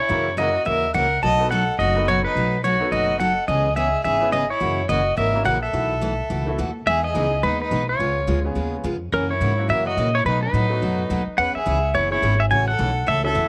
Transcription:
0.00 E4 C#5
0.09 F#2 C#3 E3 A#3 C#4 E4 F#4 A#4
0.37 C#3 E3 A#3 C#4 E4 F#4 A#4 D#5
0.65 D#2 C#3 E3 A#3 C#4 F#4 A#4 E5
0.94 C#2 C#3 E3 A#3 C#4 F#4 A#4 F#5
1.23 B1 B2 F#3 A3 D#4 F#4 D#5 A5
1.38 B3 D#4 F#4 A4 B4
1.51 B2 F#3 A3 D#4 F#4 A4 F#5
1.79 F#1 B2 F#3 A3 D#4 F#4 D#5
1.95 B3 D#4 F#4 A4 B4
2.07 B2 F#3 A3 D#4 F#4 C#5
2.25 D#4 B4
2.35 B1 B2 F#3 A3 D#4 F#4
2.64 B2 F#3 A3 D#4 F#4 C#5
2.80 B3 D#4 F#4 A4 B4
2.92 F#1 B2 F#3 A3 D#4 F#4 D#5
3.20 B2 F#3 A3 D#4 F#4 A4 F#5
3.48 C#2 C#3 E3 B3 C#4 G#4 D#5
3.76 C#3 E3 B3 C#4 G#4 E5
4.04 G#1 C#3 E3 B3 C#4 G#4 E5
4.21 B3 C#4 E4 G#4 B4
4.32 C#3 E3 B3 C#4 G#4 D#5
4.50 E4 C#5
4.60 F#2 C#3 E3 A#3 C#4 F#4
4.89 F#1 C#3 E3 A#3 C#4 F#4 D#5
5.17 G#1 C#3 E3 A#3 C#4 F#4 A#4 E5
5.34 A#3 C#4 E4 F#4 A#4
5.45 A#1 C#3 E3 A#3 C#4 F#4 A#4 F#5
5.63 A4 E5
5.73 B1 B2 E3 A3 E4 F#4
6.01 B2 E3 A3 E4 F#4
6.30 C#2 B2 E3 A3 E4 F#4
6.46 A3 B3 E4 F#4 A4
6.58 D#2 B2 E3 A3 E4 F#4
6.86 E2 E3 G#3 B3 D#4 G#4 E5
7.04 G#4 D#5
7.14 C#2 E3 G#3 B3 D#4 E4 G#4
7.43 D#2 E3 G#3 B3 D#4 G#4 B4
7.62 D#4 B4
7.71 B1 E3 G#3 B3 D#4 G#4
7.89 F4 C#5
7.99 C#2 C#3 G#3 B3 F4 G#4
8.27 D2 C#3 G#3 B3 F4 G#4
8.44 G#3 B3 C#4 F4 G#4
8.55 D#2 C#3 G#3 B3 F4 G#4
8.84 F2 C#3 G#3 B3 F4 G#4
9.12 F#2 C#3 E3 A#3 C#4 F#4 A#4
9.31 E4 C#5
9.41 G#2 C#3 E3 A#3 C#4 F#4
9.57 F#3 A#3 C#4 E4 F#4
9.69 F#2 C#3 E3 A#3 C#4 F#4 A#4 E5
9.87 F#4 D#5
9.97 A#2 C#3 E3 A#3 C#4 F#4
10.15 E4 C#5
10.25 B2 F#3 A3 D#4 F#4 B4
10.43 D#4 B4
10.53 A2 B2 F#3 A3 D#4 F#4
10.69 F#3 A3 B3 D#4 F#4
10.82 F#2 B2 F#3 A3 D#4 F#4
11.10 D#2 B2 F#3 A3 D#4 F#4
11.27 muted upright bass stroke
11.38 E2 E3 B3 C#4 G#4 B4 F#5
11.55 G#4 E5, muted upright bass stroke
11.66 C#2 E3 B3 C#4 G#4
11.94 F#1 E3 B3 C#4 E4 G#4 C#5
12.11 G#3 B3 C#4 E4 G#4 C#5
12.22 G#1 E3 B3 C#4 G#4
12.40 G#4 E5
12.50 A1 C#3 E3 A3 C#4 F#4 C#5 G#5
12.68 A4 F#5
12.78 B1 C#3 E3 A3 C#4 F#4
13.06 C#2 C#3 E3 A3 C#4 F#4 A4 E5
13.24 A3 C#4 E4 F#4 A4 E5
13.35 E2 C#3 E3 A3 C#4 F#4

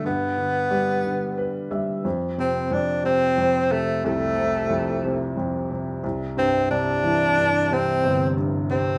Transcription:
0.04 G2 B3
0.37 D3
0.70 G3
1.04 D3
1.38 B4
1.71 G3 E5
2.05 F2
2.38 C3 C4
2.71 F2 D4
3.04 C3 C4
3.37 F2
3.71 C3 A3
4.04 C2 A3
4.38 C3
4.70 F2
5.05 C3
5.37 F2
5.70 C3
6.04 C2
6.37 G2 C4
6.71 C3 D4
7.03 E3
7.37 G2
7.71 C3 C4
8.04 G1
8.37 G2
8.70 C3 C4

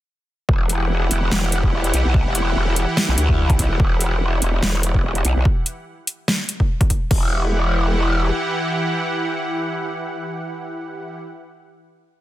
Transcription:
0.49 E1 E3 E4 G4 F#5, kick
0.69 closed hi-hat
1.11 E1, closed hi-hat
1.32 E1, snare
1.52 closed hi-hat
1.63 kick
1.84 closed hi-hat
1.94 B1, closed hi-hat
2.05 B1
2.14 kick
2.26 E1
2.35 closed hi-hat
2.56 E1
2.76 closed hi-hat
2.97 snare
3.08 B1
3.18 D2, closed hi-hat
3.29 kick
3.50 kick, closed hi-hat
3.59 B1, kick, closed hi-hat
3.70 E1
3.80 E1, kick
4.01 closed hi-hat
4.42 E1, closed hi-hat
4.63 E1, snare
4.83 closed hi-hat
4.95 kick
5.15 closed hi-hat
5.25 B1, closed hi-hat
5.36 B1
5.45 kick
5.66 closed hi-hat
6.07 closed hi-hat
6.28 snare
6.49 closed hi-hat
6.60 kick
6.81 kick, closed hi-hat
6.90 kick, closed hi-hat
7.11 E1 E3 E4 G4 F#5, kick, crash

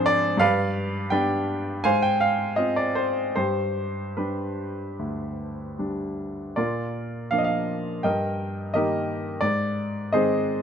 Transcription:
Already playing: G#2 F3 C4 D4 F4 G#4 C5
0.06 D5
0.37 G2 B4 D5 F5
1.10 G3 B3 D4 B4 D5 G5
1.84 G#2 C5 F5 G#5
2.02 G5
2.21 F5
2.56 C4 F4 D#5
2.76 D5
2.95 C5
3.36 G2 G4 C5
4.17 G3 D4 G4 B4
4.99 D2
5.79 G3 D4
6.56 A#2 F4 A#4 D5
7.31 F3 A#3 D4 F5
7.38 D#5
7.44 F5
8.03 G2 A#4 D#5 G5
8.74 D#3 A#3 D#4 G4 A#4 D#5
9.41 G#2 D5
10.12 D#3 G#3 C4 G#4 C5 D#5

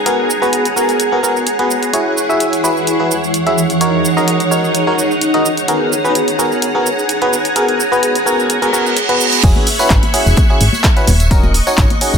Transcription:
Already playing: G#4 C#5 F#5 G#5 A#5
0.06 B3 F#4 G#4 A#4, closed hi-hat, shaker
0.30 shaker
0.42 B3 F#4 G#4 B4, shaker
0.53 closed hi-hat, shaker
0.65 closed hi-hat, shaker
0.76 B3 F#4 G#4 A#4, shaker
0.89 closed hi-hat, shaker
1.00 closed hi-hat, shaker
1.12 B3 F#4 G#4 A#4
1.23 B3 F#4 G#4 A#4, shaker
1.36 shaker
1.47 closed hi-hat, shaker
1.59 B3 F#4 G#4 B4, closed hi-hat
1.71 shaker
1.83 closed hi-hat, shaker
1.93 E3 E4 F#4 G#4 C#5 G#5, closed hi-hat, shaker
2.15 F#5, shaker
2.29 E4 F#4 G#4 E5, shaker
2.39 C#5, closed hi-hat, shaker
2.53 closed hi-hat, shaker
2.64 E4 F#4 G#4 B4, shaker
2.77 shaker
2.87 closed hi-hat, shaker
3.00 E4 F#4 G#4 B4
3.11 shaker
3.24 shaker
3.34 closed hi-hat, shaker
3.46 E4 F#4 G#4 E5, closed hi-hat
3.58 shaker
3.70 closed hi-hat, shaker
3.81 D#4 F#4 A#4 C#5, closed hi-hat, shaker
4.05 shaker
4.17 D#4 F#4 A#4 D#5, shaker
4.28 closed hi-hat, shaker
4.40 closed hi-hat, shaker
4.51 D#4 F#4 A#4 C#5, shaker
4.64 shaker
4.75 closed hi-hat, shaker
4.87 D#4 F#4 A#4 C#5
4.99 shaker
5.11 shaker
5.21 closed hi-hat, shaker
5.34 D#4 F#4 A#4 D#5, closed hi-hat
5.46 shaker
5.57 closed hi-hat, shaker
5.68 B3 F#4 G#4 A#4 F#5 G#5 A#5, closed hi-hat, shaker
5.93 shaker
6.04 B3 F#4 G#4 B4, shaker
6.15 closed hi-hat, shaker
6.28 closed hi-hat, shaker
6.39 B3 F#4 G#4 A#4, shaker
6.52 shaker
6.62 closed hi-hat, shaker
6.75 B3 F#4 G#4 A#4
6.86 shaker
6.99 shaker
7.09 closed hi-hat, shaker
7.22 B3 F#4 G#4 B4, closed hi-hat
7.33 shaker
7.45 closed hi-hat, shaker
7.56 B3 F#4 G#4 A#4, closed hi-hat, shaker
7.68 closed hi-hat
7.80 shaker
7.92 B3 F#4 G#4 B4, shaker
8.03 closed hi-hat, shaker
8.15 closed hi-hat, shaker
8.26 B3 F#4 G#4 A#4, shaker
8.40 shaker
8.50 closed hi-hat, reverse cymbal, shaker
8.62 B3 F#4 G#4 A#4, closed hi-hat, shaker
8.73 B3 F#4 G#4 A#4, shaker
8.86 shaker
8.97 closed hi-hat, shaker
9.09 B3 F#4 G#4 B4, closed hi-hat
9.21 shaker
9.33 closed hi-hat, shaker
9.43 E1 C#4 E4 F#4 G#4 E5 C#6 F#6 G#6, kick, closed hi-hat, tambourine, crash, shaker
9.56 tambourine, high conga
9.67 open hi-hat, shaker
9.79 C#4 E4 F#4 B4, tambourine, shaker
9.90 G#1, kick, clap, closed hi-hat, shaker
10.03 closed hi-hat, tambourine, high conga
10.14 C#4 E4 F#4 G#4, open hi-hat, shaker
10.26 E1, tambourine, shaker
10.37 kick, closed hi-hat, tambourine, high conga, shaker
10.50 C#4 E4 F#4 G#4, tambourine
10.61 G#1, open hi-hat, shaker
10.73 tambourine, high conga, shaker
10.84 kick, clap, closed hi-hat, tambourine, shaker
10.97 C#4 E4 F#4 B4, closed hi-hat, tambourine
11.07 D#1, open hi-hat, high conga, shaker
11.20 closed hi-hat, tambourine, shaker
11.31 C#4 D#4 F#4 A#4 D#5 C#6 F#6, kick, closed hi-hat, tambourine, shaker
11.43 tambourine, high conga
11.54 open hi-hat, shaker
11.67 C#4 D#4 F#4 C#5, tambourine, shaker
11.78 G#1, kick, clap, closed hi-hat, shaker
11.90 closed hi-hat, tambourine, high conga
12.01 C#4 D#4 F#4 G#4, open hi-hat, shaker
12.14 D#1, tambourine, shaker

